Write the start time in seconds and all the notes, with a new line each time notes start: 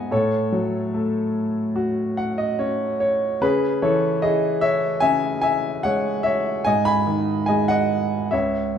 Already playing: B3 D#4 D#5 F#5 G#5
0.11 A2 A4 C#5
0.52 F#3
0.94 A3
1.76 F#4
2.17 F#5
2.38 D#5
2.59 C#4 C#5
3.00 C#5
3.41 C#3 G#4 B4
3.82 E3 A4 C#5
4.22 E4 G#4 D#5
4.61 C#5 E5
5.00 C#3 E5 G#5
5.41 E5 G#5
5.83 G#3 C#5 F#5
6.23 C#5 E5
6.64 G#2 D#5 G#5
6.85 G#5 B5
7.07 D#3
7.46 G#3 D#5 G#5
7.68 D#5 F#5
8.31 C#2 C#5 E5